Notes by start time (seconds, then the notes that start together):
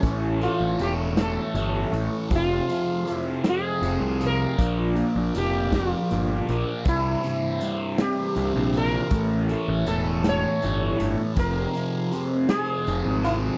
Already playing: C#4 E5
0.03 A1 A2 E3 A3 A4 C#5 C#6, kick, closed hi-hat
0.41 E3 A3 F4, closed hi-hat
0.60 A1
0.79 E1 A2 E3 A3 G4, closed hi-hat
1.17 E3 A3, snare, closed hi-hat
1.21 A4
1.54 G1 A2 E3 A3, closed hi-hat
1.92 A1 E3 A3, closed hi-hat
2.30 F1 F2 C3 F3 G#4 C5 F5 C6, kick, closed hi-hat
2.36 F4
2.68 C3 F3, closed hi-hat
3.05 F2 C3 F3, closed hi-hat
3.12 E4
3.44 C3 F3, snare, closed hi-hat
3.49 G#4
3.82 F1 F2 C3 F3, closed hi-hat
4.01 C2
4.20 C3 F3, closed hi-hat
4.26 A#4
4.57 A#1 A#2 F3 A#3 A#4 D5 D6, kick, closed hi-hat
4.96 F3 A#3, closed hi-hat
5.16 A#1
5.34 F1 A#2 F3 A#3, closed hi-hat
5.38 G4
5.72 F3 A#3 F4, kick, snare, closed hi-hat
6.11 G1 A#2 F3 A#3, closed hi-hat
6.48 A#1 F3 A#3, closed hi-hat
6.84 C2 G2 G4 C5 E5 C6, kick, closed hi-hat
6.88 C3 E4
7.24 G2 C3, closed hi-hat
7.61 C2 G2 C3, closed hi-hat
7.98 G2 C3 G4, snare, closed hi-hat
8.36 C2 G2 C3, closed hi-hat
8.55 A#1
8.74 G2 C3, closed hi-hat
8.78 A#4
9.10 A1 A2 E3 A3 C#5 A5 C#6, kick, closed hi-hat
9.49 E3 A3, closed hi-hat
9.68 A1
9.86 E1 A2 E3 A3 A4, closed hi-hat
10.24 E3 A3, snare, closed hi-hat
10.29 C#5
10.62 G1 A2 E3 A3, closed hi-hat
10.99 G1 E3 A3, closed hi-hat
11.36 F1 F2 C3 F3 G#4 A#4 C5 G#5 C6, kick, closed hi-hat
11.73 C3 F3, closed hi-hat
12.11 F2 C3 F3, closed hi-hat
12.49 C3 F3 G#4, snare, closed hi-hat
12.86 F1 F2 C3 F3, closed hi-hat
13.06 G#1
13.23 C3 F3 E4, closed hi-hat